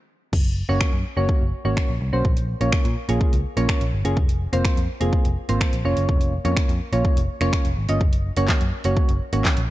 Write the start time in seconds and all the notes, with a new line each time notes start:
0.33 F#1, kick, crash
0.69 F#1 A#3 C#4 F#4 C#5
0.81 finger snap, kick
0.93 F#2
1.17 F#1 A#3 C#4 F#4 C#5
1.29 kick
1.41 F#1
1.65 G#1 A#3 C#4 F#4 C#5
1.77 finger snap, kick
1.89 A#1
2.01 C2
2.13 B1 A#3 C#4 F#4 C5
2.25 kick
2.37 closed hi-hat
2.61 A#1 A#3 C#4 F4 C#5, closed hi-hat
2.72 finger snap, kick
2.85 A#2, closed hi-hat
3.09 A#1 A#3 C#4 F4 G#4, closed hi-hat
3.21 kick
3.33 C#2, closed hi-hat
3.57 A#1 A#3 C#4 F4 C#5, closed hi-hat
3.69 finger snap, kick
3.81 A#1, closed hi-hat
3.93 G1
4.05 F#1 A#3 C#4 F4 G#4, closed hi-hat
4.17 F1, kick
4.29 closed hi-hat
4.53 F1 A#3 C4 F4 C5, closed hi-hat
4.65 finger snap, kick
4.77 F2, closed hi-hat
5.01 F1 A#3 C4 F4 G#4, closed hi-hat
5.13 kick
5.25 F1, closed hi-hat
5.49 G#1 A#3 C4 F4 C5, closed hi-hat
5.61 finger snap, kick
5.73 A#1, closed hi-hat
5.85 F1 A#3 C#4 F4 C#5
5.97 F#1, closed hi-hat
6.09 kick
6.21 closed hi-hat
6.45 F2 A#3 C#4 F4 C#5, closed hi-hat
6.57 finger snap, muted picked electric bass stroke, kick
6.69 F2, closed hi-hat
6.93 A#1 A#3 C#4 F4 C#5, closed hi-hat
7.05 kick
7.17 F1, closed hi-hat
7.41 F1 A#3 C#4 F4 C#5, finger snap, closed hi-hat
7.53 finger snap, kick
7.65 F1, closed hi-hat
7.77 G#1
7.89 G1 A#3 C#4 F4 D#5, closed hi-hat
8.01 kick
8.13 closed hi-hat
8.37 F#1 A#3 C#4 F#4 C#5, closed hi-hat
8.48 kick, snare, clap
8.61 F#2, closed hi-hat
8.84 F#1 A#3 C#4 F#4 C#5, closed hi-hat
8.97 kick
9.09 F#1, closed hi-hat
9.33 G#1 A#3 C#4 F#4 C#5, closed hi-hat
9.45 kick, snare, clap
9.57 A#1, closed hi-hat